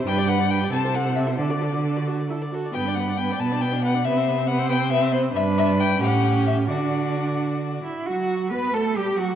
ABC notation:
X:1
M:6/8
L:1/16
Q:3/8=90
K:Clyd
V:1 name="Violin"
g2 f2 g2 a2 f2 e2 | d6 z6 | g2 f2 g2 a2 g2 f2 | e4 f2 g2 e2 c2 |
[K:Glyd] e2 e2 g2 f4 e2 | d8- d2 z2 | F4 B2 A2 G2 F2 |]
V:2 name="Violin"
B d B d B d A c A c A c | A d A d A d A d A d A d | B d B d B d B d B d B d | B c B c B c B c B c B c |
[K:Glyd] B6 G6 | F8- F2 z2 | F4 B2 A2 G2 F2 |]
V:3 name="Viola"
D G D G D G C E C E C E | D F D F D F F2 E2 F2 | B, D B, D B, D B, D B, D B, D | B, C B, C B, C B, C B, C B, C |
[K:Glyd] D6 C6 | D8- D2 z2 | F,4 B,2 A,2 G,2 F,2 |]
V:4 name="Cello" clef=bass
G,,6 C,6 | D,8- D,2 z2 | G,,6 B,,6 | C,12 |
[K:Glyd] G,,6 A,,6 | D,8- D,2 E2 | F4 B2 A2 G2 F2 |]